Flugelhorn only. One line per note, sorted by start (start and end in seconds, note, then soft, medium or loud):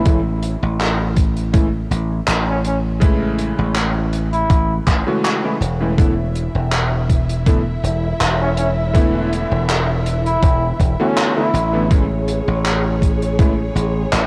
2.49 2.59 C#4 medium
2.66 2.78 C#4 medium
4.33 4.77 E4 medium
8.41 8.52 C#4 medium
8.58 8.71 C#4 medium
10.26 10.70 E4 loud
11.00 11.33 C#4 medium
11.37 11.91 E4 medium